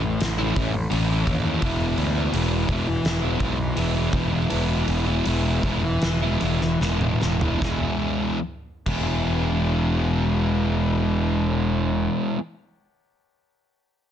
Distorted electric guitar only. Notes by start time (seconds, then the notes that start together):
Already playing: A2
0.03 muted distorted electric guitar stroke
0.38 A3 C#4 E4
0.55 E3 A3 C#4 E4
0.73 muted distorted electric guitar stroke
0.90 A2 E3 A3 C#4 E4
1.08 A3 C#4 E4
1.45 A3 C#4 E4
1.61 E3 G#3 B3
1.65 E4
2.15 G#3 B3 E4
2.33 E3 G#3 B3 E4
2.68 E3 G#3 B3 E4
2.88 muted distorted electric guitar stroke
3.22 G#3 B3 E4
3.40 E3 G#3 B3
3.44 E4
3.59 muted distorted electric guitar stroke
3.76 E3 G#3 B3 E4
3.94 B3 E4
3.98 G#3
4.13 E3 G#3 B3 E4
4.31 G#3 B3 E4
4.50 E3 G#3 B3 E4
5.06 G#3 B3 E4
5.25 E3 G#3 B3 E4
5.63 E3 G#3 B3 E4
5.83 muted distorted electric guitar stroke
6.21 G#3 B3 E4
6.41 E3 G#3 B3 E4
6.62 muted distorted electric guitar stroke
6.81 E3 G#3 B3 E4
7.01 G#3 B3 E4
7.42 G#3 B3 E4
7.61 E3 G#3 B3 E4
7.65 G#4
8.86 E3 G#3 B3 E4
8.91 G#4